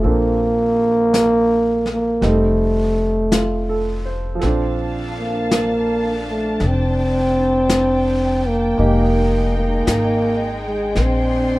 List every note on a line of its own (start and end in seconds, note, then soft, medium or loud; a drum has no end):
0.01 2.19 A#1 medium
0.01 2.22 F3 soft
0.01 2.21 C4 soft
0.01 2.23 A4 soft
0.01 brush sweep soft
0.06 1.89 A#3 medium
0.06 2.24 D4 soft
1.14 brush sweep soft
1.14 snare soft
1.14 hi-hat pedal soft
1.86 snare soft
1.92 2.29 A#3 medium
2.21 4.38 F1 medium
2.21 4.41 G3 soft
2.21 4.42 A3 soft
2.21 4.41 C4 soft
2.21 4.42 D#4 soft
2.21 brush sweep soft
2.21 snare soft
2.28 4.10 A3 medium
3.32 4.03 F4 soft
3.32 brush sweep soft
3.32 snare soft
3.32 hi-hat pedal medium
3.69 4.27 A4 soft
4.05 4.63 C5 soft
4.35 8.75 F3 soft
4.39 6.57 A#1 medium
4.39 8.79 C4 soft
4.39 8.75 D4 medium
4.39 8.77 A4 soft
4.39 8.75 A5 medium
4.39 brush sweep soft
4.39 snare soft
4.44 8.81 D4 soft
4.44 6.59 F5 medium
5.19 6.23 A#3 medium
5.51 brush sweep soft
5.51 snare soft
5.51 hi-hat pedal soft
6.30 6.69 A3 medium
6.59 8.75 F1 medium
6.59 11.59 G5 medium
6.59 brush sweep soft
6.59 snare soft
6.67 8.49 C4 medium
7.69 brush sweep soft
7.69 snare soft
7.69 hi-hat pedal soft
8.48 9.57 A#3 medium
8.76 9.83 F1 medium
8.76 11.59 G#3 medium
8.76 10.96 G#3 soft
8.76 10.96 A#3 soft
8.76 10.93 D#4 medium
8.76 10.96 D#4 soft
8.76 10.97 G4 soft
8.76 brush sweep soft
9.58 10.60 A#3 medium
9.87 10.92 G#1 medium
9.87 brush sweep soft
9.87 snare soft
9.87 hi-hat pedal soft
10.66 11.03 G#3 medium
10.95 11.59 A#1 medium
10.95 11.59 D4 medium
10.95 11.59 C6 medium
10.95 brush sweep soft
10.95 snare soft
11.02 11.59 C4 medium